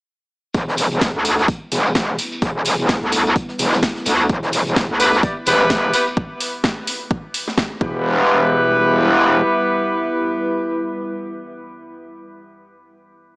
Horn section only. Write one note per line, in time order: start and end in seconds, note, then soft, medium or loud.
5.00 5.15 B3 medium
5.00 5.15 E4 medium
5.00 5.15 G4 medium
5.00 5.15 B4 loud
5.23 5.33 B3 medium
5.23 5.33 E4 medium
5.23 5.33 G4 medium
5.23 5.33 D5 medium
5.47 5.91 B3 loud
5.47 5.91 E4 loud
5.47 5.91 G4 loud
5.47 5.91 B4 loud
5.93 6.03 B3 loud
5.93 6.03 E4 medium
5.93 6.03 G4 medium
5.93 6.03 B4 loud
7.81 10.99 B3 loud
7.81 10.99 E4 medium
7.81 10.99 G4 medium
7.81 10.99 B4 loud